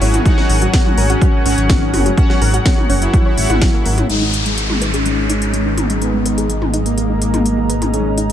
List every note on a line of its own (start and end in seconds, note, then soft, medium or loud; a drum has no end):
0.00 0.19 G#1 loud
0.00 4.08 G#2 medium
0.00 4.08 B2 medium
0.00 4.06 F#3 medium
0.00 4.06 C#4 medium
0.00 0.09 C#4 loud
0.00 0.16 E4 loud
0.00 0.23 F#4 medium
0.00 5.91 F#4 medium
0.00 4.06 G#4 medium
0.00 4.06 A#4 medium
0.00 0.23 C#5 medium
0.00 5.12 C#5 medium
0.00 0.09 C#5 medium
0.00 0.23 F#5 loud
0.00 4.71 G#5 medium
0.00 open hi-hat medium
0.14 closed hi-hat medium
0.14 mid tom medium
0.26 0.37 F#3 medium
0.26 0.49 D#4 loud
0.26 1.43 F#4 loud
0.26 0.37 F#4 medium
0.26 1.43 C#5 medium
0.26 1.43 F#5 loud
0.26 kick loud
0.26 closed hi-hat medium
0.38 0.42 C#4 medium
0.38 0.42 C#5 medium
0.38 snare soft
0.50 0.67 G#1 loud
0.50 open hi-hat loud
0.62 0.69 F#3 medium
0.62 0.69 F#4 medium
0.62 closed hi-hat medium
0.74 kick loud
0.74 snare loud
0.74 closed hi-hat medium
0.86 0.93 F#3 medium
0.86 0.93 F#4 medium
0.86 mid tom medium
0.98 1.15 G#1 medium
0.98 1.05 A#4 medium
0.98 1.05 A#5 medium
0.98 open hi-hat medium
1.10 2.08 C#4 loud
1.10 1.17 F#4 medium
1.10 1.17 F#5 medium
1.10 closed hi-hat medium
1.22 1.29 F#3 medium
1.22 1.29 F#4 medium
1.22 kick loud
1.22 closed hi-hat medium
1.46 1.54 G#1 loud
1.46 1.53 C#4 loud
1.46 2.15 F#4 medium
1.46 2.15 C#5 medium
1.46 1.53 C#5 medium
1.46 2.15 F#5 loud
1.46 open hi-hat loud
1.58 1.95 G#1 medium
1.58 closed hi-hat medium
1.70 1.81 F#3 medium
1.70 1.81 F#4 medium
1.70 kick loud
1.70 snare loud
1.70 closed hi-hat medium
1.82 1.86 C#4 medium
1.82 1.86 C#5 medium
1.94 2.11 F#1 medium
1.94 open hi-hat medium
1.94 mid tom medium
2.06 2.13 F#3 medium
2.06 2.13 F#4 medium
2.06 closed hi-hat medium
2.18 2.40 C#4 loud
2.18 3.35 F#4 loud
2.18 3.35 C#5 medium
2.18 3.35 F#5 loud
2.18 kick loud
2.18 closed hi-hat medium
2.30 2.37 F#3 medium
2.30 2.37 F#4 medium
2.30 snare soft
2.42 2.59 G#1 loud
2.42 2.49 A#4 medium
2.42 2.49 A#5 medium
2.42 open hi-hat loud
2.54 2.61 F#4 medium
2.54 2.61 F#5 medium
2.54 closed hi-hat medium
2.66 2.73 F#3 medium
2.66 2.73 F#4 medium
2.66 kick loud
2.66 snare loud
2.66 closed hi-hat medium
2.78 mid tom medium
2.90 3.07 F#1 loud
2.90 2.97 C#4 loud
2.90 2.97 C#5 medium
2.90 open hi-hat medium
3.02 4.00 E4 loud
3.02 closed hi-hat medium
3.14 3.25 F#3 medium
3.14 3.25 F#4 medium
3.14 kick loud
3.14 closed hi-hat medium
3.26 3.30 C#4 medium
3.26 3.30 C#5 medium
3.37 3.46 G#1 medium
3.37 4.07 F#4 medium
3.37 4.07 C#5 medium
3.37 4.07 F#5 loud
3.37 open hi-hat loud
3.50 3.67 G#1 medium
3.50 3.60 F#5 medium
3.50 3.60 F#6 medium
3.50 closed hi-hat medium
3.50 mid tom loud
3.62 3.69 F#3 medium
3.62 3.69 F#4 medium
3.62 kick loud
3.62 snare loud
3.62 closed hi-hat medium
3.74 3.84 A#3 medium
3.74 3.84 A#4 medium
3.86 4.03 G#1 loud
3.86 3.97 A#3 medium
3.86 3.97 A#4 medium
3.86 open hi-hat medium
3.98 closed hi-hat medium
3.98 mid tom medium
4.09 8.32 G#1 medium
4.09 8.32 G#2 medium
4.09 8.32 B2 medium
4.09 5.27 G#3 medium
4.09 4.21 G#3 medium
4.09 8.32 G#3 medium
4.09 5.27 D#4 medium
4.09 4.33 D#4 medium
4.09 8.32 D#4 medium
4.09 5.27 G#4 loud
4.09 8.32 G#4 medium
4.09 8.32 A#4 medium
4.09 closed hi-hat medium
4.09 downlifter medium
4.22 4.26 D#4 medium
4.22 8.32 D#5 medium
4.34 closed hi-hat medium
4.46 4.53 G#3 medium
4.46 8.32 A#5 medium
4.46 closed hi-hat medium
4.58 closed hi-hat medium
4.70 4.77 G#3 medium
4.70 mid tom medium
4.82 4.89 B4 medium
4.82 closed hi-hat medium
4.94 5.92 C#4 medium
4.94 5.01 G#4 medium
4.94 closed hi-hat medium
5.06 5.13 G#3 medium
5.06 closed hi-hat soft
5.30 5.99 G#3 medium
5.30 5.37 D#4 medium
5.30 5.99 D#4 medium
5.30 5.99 G#4 medium
5.30 closed hi-hat medium
5.42 closed hi-hat medium
5.54 5.65 G#3 medium
5.54 closed hi-hat medium
5.66 5.70 D#4 medium
5.78 closed hi-hat medium
5.78 mid tom medium
5.90 5.97 G#3 medium
5.90 closed hi-hat medium
6.02 7.19 G#3 medium
6.02 6.25 B3 loud
6.02 7.19 D#4 medium
6.02 7.19 G#4 loud
6.02 closed hi-hat medium
6.14 6.21 G#3 medium
6.26 6.33 B4 medium
6.26 closed hi-hat medium
6.38 6.45 G#4 medium
6.38 closed hi-hat medium
6.50 6.57 G#3 medium
6.50 closed hi-hat medium
6.62 mid tom medium
6.74 6.81 D#4 loud
6.74 closed hi-hat medium
6.86 7.84 A#3 medium
6.86 closed hi-hat medium
6.98 7.09 G#3 medium
6.98 closed hi-hat medium
7.10 7.14 D#4 medium
7.22 7.91 G#3 medium
7.22 7.91 D#4 medium
7.22 7.91 G#4 medium
7.22 closed hi-hat medium
7.34 7.41 G#3 medium
7.34 closed hi-hat soft
7.34 mid tom medium
7.46 closed hi-hat medium
7.58 7.65 G#3 medium
7.70 7.77 B4 medium
7.70 closed hi-hat medium
7.82 7.89 G#4 medium
7.82 closed hi-hat medium
7.82 mid tom medium
7.93 8.32 G#3 medium
7.93 8.01 G#3 medium
7.93 8.17 C#4 medium
7.93 8.32 D#4 medium
7.93 8.32 G#4 loud
7.93 closed hi-hat soft
8.18 8.25 D#4 loud
8.18 closed hi-hat medium